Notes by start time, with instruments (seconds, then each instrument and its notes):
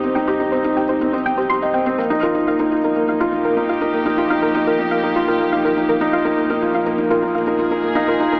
Already playing: analog synth bass C2, string section F3 A#3 D#4 G4, felt piano C4 D#4 G4
0.04 felt piano C4
0.15 felt piano D#4, synth arpeggio sound G5
0.27 felt piano G4, synth arpeggio sound C5
0.40 felt piano D#4
0.52 felt piano C4, synth arpeggio sound C5
0.64 felt piano D#4
0.77 felt piano G4, synth arpeggio sound G5
0.89 felt piano D#4, synth arpeggio sound C5
1.01 felt piano C4
1.13 felt piano D#4, synth arpeggio sound C5
1.26 felt piano C4, synth arpeggio sound G5
1.38 felt piano G4, synth arpeggio sound C5
1.50 felt piano G4, synth arpeggio sound C6
1.62 felt piano D#5
1.74 felt piano C4, synth arpeggio sound G5
1.86 felt piano C4
1.98 analog synth bass A#1, string section F3, felt piano A#3, synth arpeggio sound A#4
2.10 felt piano D#4
2.23 felt piano F4, synth arpeggio sound A#4
2.35 felt piano D#4
2.47 felt piano A#3, string section A#3, synth arpeggio sound F5
2.59 felt piano D#4, synth arpeggio sound A#4
2.71 felt piano F4
2.84 felt piano D#4, synth arpeggio sound A#4
2.96 felt piano A#3
3.08 felt piano D#4, synth arpeggio sound F5
3.20 felt piano F4, synth arpeggio sound A#4
3.29 felt piano D#4, string section G4
3.45 felt piano A#3, synth arpeggio sound A#4
3.57 felt piano D#4
3.69 felt piano F4, synth arpeggio sound F5
3.81 felt piano D#4, synth arpeggio sound A#4
3.93 felt piano A#3
4.05 felt piano D#4, synth arpeggio sound A#4
4.18 felt piano F4
4.30 felt piano D#4, synth arpeggio sound F5
4.42 felt piano A#3, synth arpeggio sound A#4
4.55 felt piano D#4
4.67 felt piano F4, synth arpeggio sound A#4
4.79 felt piano D#4
4.91 felt piano A#3, synth arpeggio sound F5
5.03 felt piano D#4, synth arpeggio sound A#4
5.16 felt piano F4
5.28 felt piano D#4, synth arpeggio sound A#4
5.40 felt piano A#3
5.52 felt piano D#4, synth arpeggio sound F5
5.65 felt piano F4, synth arpeggio sound A#4
5.77 felt piano D#4
5.89 felt piano A#3, synth arpeggio sound A#4
6.01 felt piano D#4
6.13 felt piano F4, synth arpeggio sound F5
6.25 felt piano D#4, synth arpeggio sound A#4
6.38 felt piano A#3
6.50 felt piano D#4, synth arpeggio sound A#4
6.62 felt piano F4
6.74 felt piano D#4, synth arpeggio sound F5
6.86 felt piano A#3, synth arpeggio sound A#4
6.98 felt piano D#4
7.10 felt piano F4, synth arpeggio sound A#4
7.22 felt piano D#4, string section G#4
7.34 felt piano A#3, synth arpeggio sound F5
7.47 felt piano D#4, synth arpeggio sound A#4
7.59 felt piano F4
7.71 felt piano D#4, synth arpeggio sound A#4
7.83 felt piano A#3
7.95 felt piano D#4, synth arpeggio sound F5
8.08 felt piano F4, synth arpeggio sound A#4
8.20 felt piano D#4
8.32 felt piano A#3, synth arpeggio sound A#4